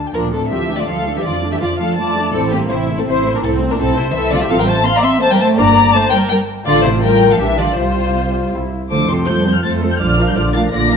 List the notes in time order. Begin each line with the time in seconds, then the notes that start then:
Already playing: D2 D3
0.07 G5
0.14 D2 A#2 F3 D4 F4 A#4
0.33 A2 A3 C4 D4 A4
0.51 D2 E3 F3 F4 G4 E5
0.69 A3 D4
0.79 D3 F4 D5
0.87 D2 F3 F4 A4 F5
1.06 A3 D4
1.15 E3 G4 E5
1.25 F2 D3 F3 F4 D5
1.43 A3 D4
1.52 E3 G4 E5
1.61 F2 D3 F3 F4 D5
1.79 F3 A3 D4 A4 F5
1.97 F2 F3 A3 F4 D5 A5
2.16 A3 D4
2.33 A1 A2 C4 E4 A4
2.51 G2 A3 A#3 C4 G4
2.70 A1 C3 C4 E4 C5
2.88 A3 C4
2.97 A2 C4 A4
3.06 A1 C3 C4 E4 C5
3.24 A3 C4
3.33 A#2 D4 A#4
3.42 C2 A2 C4 E4 A4
3.60 A3 C4
3.69 A#2 D4 A#4
3.78 C2 A2 C4 E4 A4
3.96 C3 A3 C4 E4 C5
4.14 C2 E3 C4 E4 A4 E5
4.31 D3 A3 C4 F4 D5
4.41 E3 G4 E5
4.49 A1 F3 C4 F4 A4 F5
4.58 G3 A#4 G5
4.68 A3 C5 A5
4.86 C4 F5 C6
4.94 A#3 D5 A#5
5.03 C4 E5 C6
5.21 A3 C5 A5
5.30 G3 A#4 G5
5.39 A3 C5 A5
5.57 G1 A#3 D4 D5 A#5
5.93 A3 C5 A5
6.11 G3 A#4 G5
6.29 G3 A#4 G5
6.66 A1 D3 A3 F4 D5
6.84 C3 E4 C5
7.02 G3 A#4 G5
7.30 F3 A4 F5
7.39 A#1 E3 G3 D4 G4 E5
7.58 D3 F4 D5
7.77 C2 C3 G3 F4 C5
8.53 C2 G3 E4
8.91 F2 D3 A3 F4 A4 C5 D6
9.09 C3 F3 C4 A4 C5 C6
9.27 F2 G3 A3 F4 A4 C5 G6
9.45 F3 C4 A4 C5
9.55 F3 F6
9.63 F2 A3 F4 A4 C5 A6
9.82 F3 C4 A4 C5
9.91 G3 G6
9.99 A#1 D3 F3 F4 D5 F6
10.18 F3 D4 A#4 F5
10.27 G3 G6
10.36 A#1 D3 F3 F4 D5 F6
10.54 F3 A3 D4 A#4 F5 A6
10.72 A#1 D3 A#3 F4 D5 A#6
10.91 F3 D4 A#4 F5